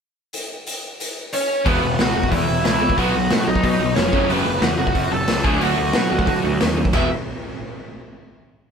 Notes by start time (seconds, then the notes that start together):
0.33 closed hi-hat
0.66 closed hi-hat
1.00 closed hi-hat
1.33 C#4 C#5, closed hi-hat
1.65 E1 E2 B2 E3 G#3 B3 B4, kick, open hi-hat
1.83 E1 E2 B2 E3 G#3
1.98 C#2 E2 B2 E3 G#3 F#4 F#5, snare, open hi-hat
2.15 E1 E2 B2 E3 G#3
2.23 kick
2.32 E2 B2 E3 G#3 E4 E5, kick, open hi-hat
2.48 E1 E2 B2 E3 G#3
2.64 C#2 E2 B2 E3 G#3 E4 E5, snare, open hi-hat
2.81 E2 B2 E3 G#3
2.90 kick
2.97 B1 B2 F#3 B3 F#4 F#5, kick, open hi-hat
3.15 B1 B2 F#3
3.30 A2 B2 F#3, snare, open hi-hat
3.47 B1 B2 F#3 D#4 D#5
3.55 kick
3.63 B2 F#3 D#4 D#5, kick, open hi-hat
3.80 B1 B2 F#3
3.95 F1 B2 F#3 C#4 C#5, snare, open hi-hat
4.13 F#1 F#2 C#3 F#3, kick
4.29 F#1 F#2 C#3 F#3 B3 B4, open hi-hat
4.46 F#1 F#2 C#3
4.62 E2 F#2 C#3 F#4 F#5, snare, open hi-hat
4.78 F#1 F#2 C#3 F#4 F#5
4.87 kick
4.95 F#2 C#3, kick, open hi-hat
5.11 F#1 F#2 C#3 A4 A5
5.28 C#2 F#2 C#3, snare, open hi-hat
5.44 D2 D3 F#3 A3 D4 G#4 G#5, kick
5.60 D2 D3 F#3 A3 D4 F#4 F#5, open hi-hat
5.76 D2 D3 F#3 A3
5.93 B2 D3 F#3 A3, snare, open hi-hat
6.10 D2 D3 F#3 A3
6.19 kick
6.26 D3 F#3 A3, kick, open hi-hat
6.43 D2 D3 F#3 A3
6.60 D#2 D3 F#3 A3, snare, open hi-hat
6.77 D3 F#3 A3
6.85 kick
6.93 E1 E2 B2 E3 G#3 B3 E4 E5, kick, crash